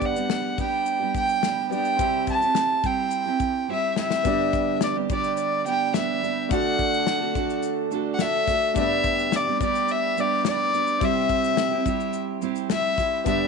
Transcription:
Already playing: G2 D3 G3 B3 D4 G4 D5
0.01 F#5, kick, shaker
0.15 G3 B3 D4 G4, shaker
0.30 snare, shaker
0.58 G3 B3 D4 G4 G5, kick, shaker
0.86 shaker
1.00 G3 B3 D4 G4
1.15 G5, kick, shaker
1.29 shaker
1.42 G3 B3 D4 G4, snare, shaker
1.70 G3 B3 D4 G4 D5 G5, shaker
1.74 G4
1.85 shaker
1.97 C3 G3 C4 E4 G4, kick, shaker
2.01 G4 E5
2.27 A5, kick, shaker
2.40 C4 E4 G4, shaker
2.55 snare, shaker
2.83 G3 C4 E4 G4 G5, kick, shaker
3.11 shaker
3.25 C4 E4 G4
3.40 kick, shaker
3.68 G3 C4 E4 G4
3.73 E5
3.96 G3 C4 E4 G4 E5, snare
4.11 snare
4.23 G2 D3 G3 B3 D4 G4, kick, shaker
4.27 D5
4.53 kick, shaker
4.81 D5, snare, shaker
4.95 G3 B3 D4 G4
5.09 G3 B3 D4 G4 D5, kick, shaker
5.24 shaker
5.37 D5, shaker
5.65 G3 B3 D4 G4 G5, shaker
5.94 G3 B3 D4 G4 E5, snare, shaker
6.22 G3 B3 D4 G4, shaker
6.49 D3 A3 D4 F#4 A4 D5, kick, shaker
6.53 F#5
6.79 kick, shaker
6.94 shaker
7.07 snare, shaker
7.21 D4 F#4 A4
7.34 A3 D4 F#4 A4, kick, shaker
7.50 shaker
7.63 shaker
7.91 A3 D4 F#4 A4, shaker
8.14 F#5
8.19 A3 D4 F#4 A4 E5, snare, shaker
8.47 A3 D4 F#4 A4, kick, snare, shaker
8.74 G2 D3 G3 A3 B3 D4 G4 D5, kick, shaker
8.78 B3 D4 G4 E5
9.04 kick, shaker
9.19 shaker
9.32 D5, snare, shaker
9.46 G3 B3 D4 G4
9.60 G3 B3 D4 G4, kick, shaker
9.64 D5
9.75 shaker
9.88 E5, shaker
10.17 G3 B3 D4 G4 D5, shaker
10.44 G3 B3 D4 G4, snare, shaker
10.48 D5
10.73 G3 B3 D4 G4, shaker
10.87 shaker
10.99 C3 G3 C4 E4 G4 E5, kick, shaker
11.03 E4 G4 E5
11.29 kick, shaker
11.44 shaker
11.57 snare, shaker
11.71 C4 E4 G4
11.85 G3 C4 E4 G4, kick, shaker
12.00 shaker
12.13 shaker
12.41 G3 C4 E4 G4, shaker
12.56 shaker
12.70 G3 C4 E4 G4 E5, snare, shaker
12.98 G3 C4 E4 G4, kick, snare, shaker
13.24 G2 D3 G3 B3 D4 G4 D5 E5, kick, shaker

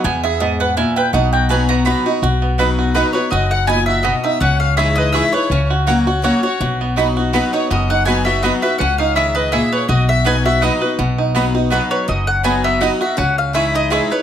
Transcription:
Already playing: B4
0.04 E2 B3 G#5
0.23 G#4 E5
0.40 G#2 B3 D#5
0.60 B4 F#5
0.77 A#2 E4 G#5
0.96 B4 G5
1.13 B1 B2 D#4 F#5
1.33 F#4 G5
1.49 F#3 B3 D#4 F#4 B4 G#5
1.69 B3 A#5
1.85 F#3 B3 D#4 F#4 B5
2.06 D#4 F#4
2.22 B1 B2 F#4
2.42 B3
2.58 F#3 B3 D#4 F#4 B4 D#5 B5
2.79 F#4
2.95 F#3 B3 D#4 F#4 B4 D#5 B5
3.13 D#4 F#4 B4 C#5
3.31 F#1 F#2 F#4 D#5
3.51 F#5
3.67 A#2 B3 D#4 F#4 D#5 G#5 B5
3.86 F#4 E5
4.03 B2 B3 F#4 D#5 B5
4.24 D#4 E5
4.40 C#2 C#3 C#4 F#5
4.60 F5
4.77 E3 G#3 D#4 E4 G#4 D#5 E5 C#6
4.96 B4 D#5
5.13 E3 G#3 D#4 E4 G#4 D#5 E5 C#6
5.32 D#4 E4 B4 C#5
5.50 C#2 C#3 C#4
5.70 F#4
5.87 F#3 A#3 C#4 F#4 C#5 F#5
6.07 C#4 F#4
6.22 F#3 A#3 C#4 F#4 C#5 F#5
6.43 C#4 F#4 C#5
6.60 B1 B2 F#4
6.81 B3
6.96 F#3 B3 D#4 F#4 D#5 B5
7.17 D#4 F#4
7.33 F#3 B3 D#4 F#4 B4 D#5 B5
7.53 D#4 F#4 C#5
7.70 F#1 F#2 B3 D#5
7.89 D#4 F#5
8.05 F#3 B3 D#4 F#4 D#5 G#5 B5
8.10 F#4
8.25 B3 D#4 F#4 E5
8.42 F#3 B3 D#4 F#4 D#5 B5
8.62 D#4 F#4 B4 E5
8.78 C#2 C#3 C#4 F#5
8.98 D#4 F5
9.15 D#3 E4 G#4 D#5 E5 C#6
9.35 B4 D#5
9.52 A#2 E4 G#4 D#5 E5 C#6
9.72 B4 C#5
9.88 B1 B2 F#4 D#5
10.09 E5
10.24 F#3 B3 D#4 F#4 B4 D#5 G#5 B5
10.45 D#4 F#4 E5
10.61 F#3 B3 D#4 F#4 D#5 B5
10.81 D#4 F#4 B4
10.98 B1 B2 B3
11.18 D#4
11.35 F#3 B3 D#4 F#4 D#5 B5
11.54 D#4 F#4
11.70 F#3 B3 D#4 F#4 B4 D#5 B5
11.91 B4 C#5
12.08 F#1 F#2 F#3 D#5
12.27 F#5
12.43 F#3 B3 D#4 F#4 D#5 G#5 B5
12.64 B3 E5
12.81 F#3 B3 D#4 F#4 D#5 B5
13.01 D#4 F#4 E5
13.17 C#2 C#3 C#4 F#5
13.38 F5
13.53 E3 G#3 C#4 D#4 E4 G#4 D#5 E5 C#6
13.74 D#4 D#5
13.90 E3 G#3 D#4 E4 G#4 D#5 E5 C#6
14.10 D#4 E4 B4 C#5

